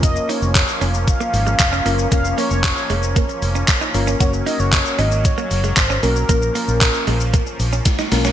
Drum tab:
HH |x-o-x-o-x-o-x-o-|x-o-x-o-x-o-x-o-|x-o-x-o-x-o-x-o-|x-o-x-o-x-o-x-o-|
SH |xxxxxxxxxxxxxxxx|xxxxxxxxxxxxxxxx|xxxxxxxxxxxxxxxx|xxxxxxxxxxxxxxxx|
CP |----x-------x---|----x-------x---|----x-------x---|----x-----------|
SD |----------------|----------------|----------------|------------oooo|
BD |o---o---o---o---|o---o---o---o---|o---o---o---o---|o---o---o---o---|